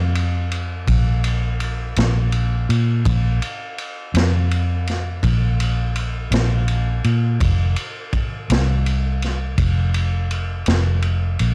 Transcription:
Already playing: F2
0.15 ride
0.51 ride
0.87 A#1, kick, ride
1.24 ride
1.60 ride
1.96 A#1, snare, ride
2.32 ride
2.69 A#2, ride
3.05 A#1, kick, ride
3.42 ride
3.78 ride
4.14 F2, snare, ride
4.51 ride
4.87 snare, ride
5.23 A#1, kick, ride
5.60 ride
5.96 ride
6.31 A#1, snare, ride
6.68 ride
7.04 A#2, ride
7.40 F1, kick, ride
7.76 ride
8.13 kick, ride
8.50 C2, snare, ride
8.86 ride
9.22 snare, ride
9.58 F1, kick, ride
9.94 ride
10.31 ride
10.66 F1, snare, ride
11.02 ride
11.39 A#1, ride

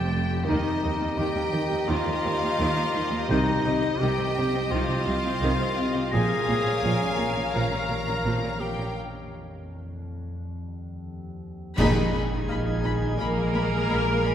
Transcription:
Already playing: F1 F2 A3 G4 C5 G5 A5 C6 A6
0.13 F2
0.47 D#2 D#3 D#4 G4 A#4 D#5 G5
0.83 D#2 D#3 G3
1.00 D#2 A#3
1.18 D#2 D#3 G4 G5
1.35 D#2 A#3
1.54 D#3
1.70 D#2 A#3
1.87 D#2 D#3 D#4 F4 F5
2.06 D#2 A#3
2.23 D#2 D#3 G3
2.41 D#2 A#3
2.58 D#2 D#3
2.76 D#2 A#3
2.96 D#3
3.11 D#2 A#3
3.28 C2 C3 D#3 D#4 G4 C5 D#5 G6
3.64 C2 C3 G3
3.81 C3 C4
3.99 C2 C3 D#3 G4 G5
4.17 C3 C4
4.37 C3
4.52 C3 C4
4.70 C2 C3 D#3 C4 F4 F5
4.88 C3 C4
5.05 C2 C3 G3
5.23 C3 C4
5.41 C2 C3 D#3
5.59 C3 C4
5.79 C3
5.95 C3 C4
6.11 A#1 A#2 F3 G#4 A#4 C#5 F5 G#5 A#6
6.48 A#1 A#2 A#3
6.66 A#2 C#4
6.83 A#1 A#2 F3
7.01 A#2 C#4
7.19 A#2
7.35 A#2 C#4
7.54 A#1 A#2 F3 A#3 A#4 A#5 F6
7.71 A#2 C#4
7.89 A#1 A#2 A#3
8.07 A#2 C#4
8.24 A#1 A#2 F3
8.42 A#2 C#4
8.60 A#2 G4 G5
8.77 A#2 C#4
8.96 F2
10.36 D#2
11.77 A#1 A#2 D#3 G#3 D#4 G#4 D#5 G#5 B5, concert bass drum, crash
12.12 A#2 D#5 G#5 B5
12.48 A#1 A#2 D#5 F5 G#5 B5 F6
12.83 A#2 D#5 G#5 B5
13.18 A#1 A#2 A#3 A#4 D#5 G#5 B5
13.53 A#3 D#5 G#5 B5
13.89 A#1 A#2 D#5 G#5 B5
14.24 A#2 D#5 G#5 B5

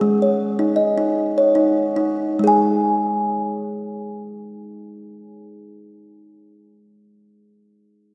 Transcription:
0.01 G#3
0.22 C#5
0.59 D#4
0.76 D#5
0.98 D#4
1.38 C#5
1.55 D#4
1.96 D#4
2.39 G#3
2.44 G#4 G#5

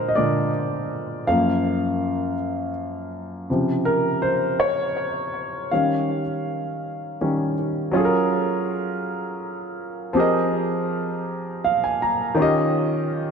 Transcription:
Already playing: A#2 D3 G#3 A#4 C5 G5
0.09 D#5
0.15 A#2 D3 G#3 D5
1.27 F#2 F3 A#3 F5
3.50 C3 C#3 F3
3.85 A#4
4.22 C5
4.60 C#5
5.71 D#3 G3 C#4 F5
7.21 D#3 G3 C#4
7.91 F#3 C#4 F4
7.97 G#4 A4
8.05 A#4
10.13 F3 C4 G4 G#4
10.19 A#4 D#5
11.64 F5
11.84 G#5
12.02 A#5
12.35 D#3 C#4 F4
12.40 G4 D#5

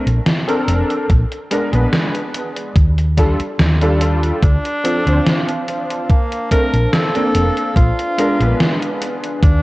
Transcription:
0.06 A#1, closed hi-hat
0.26 snare, closed hi-hat
0.48 C4 D4 A4 A#4, closed hi-hat
0.67 F1, closed hi-hat
0.90 closed hi-hat
1.09 A#1, kick, closed hi-hat
1.32 closed hi-hat
1.51 G#3 B3 D4 A#4, closed hi-hat
1.72 A#1 G#3 B3 D4 B4, closed hi-hat
1.93 snare, closed hi-hat
2.15 closed hi-hat
2.34 closed hi-hat
2.57 closed hi-hat
2.76 D#2, kick, closed hi-hat
2.98 closed hi-hat
3.18 G3 D4 F4 A4, kick, snare, closed hi-hat
3.40 muted fingered electric bass stroke, closed hi-hat
3.59 D#2, snare, closed hi-hat
3.81 G3 D4 F4 A4, closed hi-hat
4.01 closed hi-hat
4.23 closed hi-hat
4.43 D2 D4 C5 F5 A5, kick, closed hi-hat
4.65 closed hi-hat
4.84 F3 C4 D4 A4, closed hi-hat
5.05 D2 F3 C4 D4 C5, closed hi-hat
5.27 snare, closed hi-hat
5.49 closed hi-hat
5.68 closed hi-hat
5.90 closed hi-hat
6.03 C4
6.09 A#3 C5 F5, kick, closed hi-hat
6.32 closed hi-hat
6.51 A3 C4 D4 A#4, kick, closed hi-hat
6.73 A#1, closed hi-hat
6.92 A4, snare, closed hi-hat
7.15 A#3 C4 D4 A4, closed hi-hat
7.35 F1, closed hi-hat
7.57 closed hi-hat
7.76 A#1 F4 B4 G#5, kick, closed hi-hat
7.99 closed hi-hat
8.18 G#3 B3 D4 A#4, closed hi-hat
8.39 A#1 G#3 B3 D4 B4, closed hi-hat
8.60 snare, closed hi-hat
8.82 closed hi-hat
9.02 closed hi-hat
9.24 closed hi-hat
9.43 D#2 D4 G4 F5 A5, kick, closed hi-hat

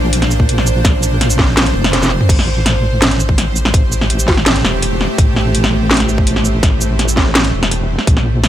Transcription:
Already playing: A#1 A#2 A#3 D4 C5
0.13 closed hi-hat
0.22 snare, closed hi-hat
0.31 shaker
0.40 kick
0.49 closed hi-hat
0.58 snare
0.67 shaker
0.85 A#1, kick, snare, closed hi-hat
1.03 closed hi-hat, shaker
1.21 snare, closed hi-hat
1.30 shaker
1.39 kick, snare
1.57 snare, closed hi-hat
1.66 closed hi-hat
1.75 F1
1.84 snare, closed hi-hat
1.93 snare, closed hi-hat
2.03 snare, shaker
2.05 snare
2.09 snare
2.21 mid tom
2.29 A1 A2, kick, closed hi-hat, crash
2.39 A3, snare
2.66 G4, snare, closed hi-hat
3.02 snare, closed hi-hat
3.11 closed hi-hat
3.20 shaker
3.29 kick
3.38 snare, closed hi-hat
3.56 shaker
3.65 snare
3.74 A1, kick, closed hi-hat
3.92 shaker
4.01 snare
4.10 closed hi-hat
4.19 shaker
4.28 kick, snare
4.37 snare
4.46 snare, closed hi-hat
4.56 closed hi-hat
4.64 E1, snare
4.82 closed hi-hat
5.01 snare
5.18 A1, kick, closed hi-hat
5.36 snare
5.55 closed hi-hat
5.64 snare
5.91 snare, closed hi-hat
5.94 closed hi-hat
5.97 snare, closed hi-hat
6.00 closed hi-hat
6.09 shaker
6.18 kick
6.27 closed hi-hat
6.36 snare
6.45 shaker
6.63 A1, kick, snare, closed hi-hat
6.81 shaker
6.99 snare, closed hi-hat
7.08 shaker
7.17 kick, snare
7.35 snare, closed hi-hat
7.44 closed hi-hat
7.54 E1
7.63 snare, closed hi-hat
7.71 closed hi-hat
7.99 snare
8.07 A#1, kick, closed hi-hat
8.17 snare
8.44 snare, closed hi-hat

